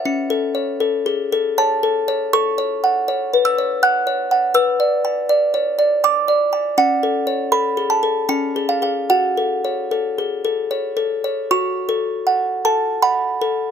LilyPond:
\new Staff \with { instrumentName = "Music box" } { \time 3/4 \key a \major \tempo 4 = 79 << { r2 a''4 | \key fis \minor cis'''4. e'''8 fis'''4 | e'''2 d'''8 r8 | fis''4 b''8 a''8 gis''8 eis''8 |
fis''2~ fis''8 r8 | cis'''4. a''8 b''4 | } \\ { \tuplet 3/2 { cis'8 a'8 cis''8 a'8 gis'8 a'8 cis''8 a'8 cis''8 } | \tuplet 3/2 { a'8 cis''8 fis''8 cis''8 b'8 cis''8 fis''8 cis''8 fis''8 } | \tuplet 3/2 { b'8 d''8 gis''8 d''8 cis''8 d''8 gis''8 d''8 gis''8 } | \tuplet 3/2 { cis'8 a'8 cis''8 a'8 gis'8 a'8 cis'8 gis'8 <gis' eis''>8 } |
\tuplet 3/2 { fis'8 a'8 cis''8 a'8 gis'8 a'8 cis''8 a'8 cis''8 } | fis'8 a'8 fis''8 a'8 fis''8 a'8 | } >> }